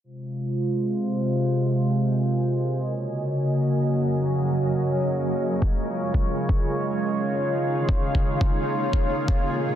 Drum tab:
BD |----------------|----------------|----------------|----------------|

BD |o-----o---o-----|----------o--o--|o-----o---o-----|